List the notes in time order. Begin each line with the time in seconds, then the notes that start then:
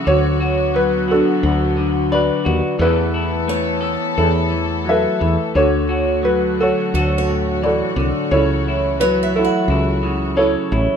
Already playing: F#3 F#4
0.05 D2 D3 F#3 B3 F#4 C#5
0.40 F#4
0.75 F#3 B4
1.08 F#4 A4
1.12 D4 F#4
1.43 D2 F#4
1.77 D3
2.12 F#4 B4 D5
2.45 D#2 F#4
2.79 E2 E3 A3 B3 E4 A4 B4
3.14 E4
3.48 A3 C#5
3.81 A4
4.18 E2 E4 A4
4.51 E3
4.85 F#3 E5
4.90 A4 B4
5.20 E2 E3
5.55 D2 D3 F#4 A4 C#5
5.89 F#4
6.23 F#3 B4
6.60 F#4 A4 C#5
6.94 D2 F#4 A4
7.18 C#5
7.29 A2
7.62 E3 F#4 A4 D5
7.96 C2 D3
8.31 C#2 C#3 E3 E4 A4 C#5
8.68 E4
9.00 F#3 B4 C#5
9.23 E5
9.36 E4 F#4 A4
9.44 F#5
9.68 C#2 E4
10.03 C#3
10.37 E4 A4 C#5
10.72 A1 E4